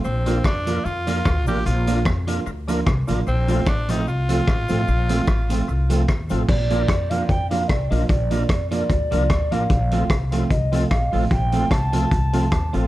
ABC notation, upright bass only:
X:1
M:4/4
L:1/8
Q:"Swing" 1/4=149
K:Bb
V:1 name="Upright bass" clef=bass
B,,,2 F,,2 F,,2 D,, A,,, | B,,,2 F,,2 D,,2 C,, A,,, | B,,,2 A,,,2 C,,2 A,,, A,,, | B,,,2 A,,,2 C,,2 E,, A,,, |
B,,,2 F,,2 F,,2 C,, B,,, | B,,,2 F,,2 D,, C,, D,, A,,, | B,,,2 C,,2 C,,2 B,,, A,,, | B,,,2 C,,2 C,,2 E,, A,,, |]